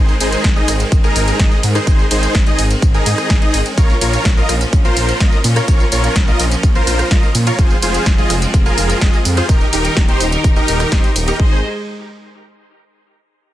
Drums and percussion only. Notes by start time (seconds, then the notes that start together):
0.09 tambourine
0.20 open hi-hat, ride, tambourine
0.32 closed hi-hat, tambourine
0.44 kick, snare, closed hi-hat, tambourine
0.56 tambourine
0.68 cross-stick, open hi-hat, ride, tambourine
0.80 closed hi-hat, tambourine
0.92 kick, closed hi-hat, tambourine
1.04 tambourine
1.16 open hi-hat, ride, tambourine
1.28 closed hi-hat, tambourine
1.40 kick, snare, closed hi-hat, tambourine
1.51 tambourine
1.63 open hi-hat, ride, tambourine
1.75 cross-stick, closed hi-hat, tambourine
1.87 kick, closed hi-hat, tambourine
1.99 tambourine
2.11 open hi-hat, ride, tambourine
2.23 closed hi-hat, tambourine
2.35 kick, snare, closed hi-hat, tambourine
2.47 closed hi-hat, tambourine
2.59 open hi-hat, ride, tambourine
2.70 closed hi-hat, tambourine
2.82 kick, closed hi-hat, tambourine
2.94 tambourine
3.06 open hi-hat, ride, tambourine
3.18 cross-stick, closed hi-hat, tambourine
3.30 kick, snare, closed hi-hat, tambourine
3.42 closed hi-hat, tambourine
3.54 open hi-hat, ride, tambourine
3.66 closed hi-hat, tambourine
3.78 kick, closed hi-hat, tambourine
3.90 tambourine
4.01 open hi-hat, ride, tambourine
4.13 closed hi-hat, tambourine
4.25 kick, snare, closed hi-hat, tambourine
4.37 tambourine
4.49 cross-stick, open hi-hat, ride, tambourine
4.61 closed hi-hat, tambourine
4.73 kick, closed hi-hat, tambourine
4.85 tambourine
4.97 open hi-hat, ride, tambourine
5.09 closed hi-hat, tambourine
5.20 kick, snare, closed hi-hat, tambourine
5.32 tambourine
5.44 open hi-hat, ride, tambourine
5.56 cross-stick, closed hi-hat, tambourine
5.68 kick, closed hi-hat, tambourine
5.80 tambourine
5.92 open hi-hat, ride, tambourine
6.04 closed hi-hat, tambourine
6.16 kick, snare, closed hi-hat, tambourine
6.28 tambourine
6.40 open hi-hat, ride, tambourine
6.51 closed hi-hat, tambourine
6.63 kick, closed hi-hat, tambourine
6.75 tambourine
6.87 open hi-hat, ride, tambourine
6.99 cross-stick, closed hi-hat, tambourine
7.11 kick, snare, closed hi-hat, tambourine
7.23 tambourine
7.35 open hi-hat, ride, tambourine
7.47 closed hi-hat, tambourine
7.59 kick, closed hi-hat, tambourine
7.71 tambourine
7.82 open hi-hat, ride, tambourine
7.94 closed hi-hat, tambourine
8.06 kick, snare, closed hi-hat, tambourine
8.18 tambourine
8.30 cross-stick, open hi-hat, ride, tambourine
8.42 closed hi-hat, tambourine
8.54 kick, closed hi-hat, tambourine
8.66 tambourine
8.78 open hi-hat, ride, tambourine
8.90 closed hi-hat, tambourine
9.01 kick, snare, closed hi-hat, tambourine
9.13 tambourine
9.25 open hi-hat, ride, tambourine
9.37 cross-stick, closed hi-hat, tambourine
9.49 kick, closed hi-hat, tambourine
9.61 tambourine
9.73 open hi-hat, ride, tambourine
9.85 closed hi-hat, tambourine
9.97 kick, snare, closed hi-hat, tambourine
10.09 closed hi-hat, tambourine
10.20 open hi-hat, ride, tambourine
10.32 closed hi-hat, tambourine
10.44 kick, closed hi-hat, tambourine
10.56 tambourine
10.68 open hi-hat, ride, tambourine
10.80 cross-stick, closed hi-hat, tambourine
10.92 kick, snare, closed hi-hat, tambourine
11.04 closed hi-hat, tambourine
11.16 open hi-hat, ride, tambourine
11.28 closed hi-hat, tambourine
11.40 kick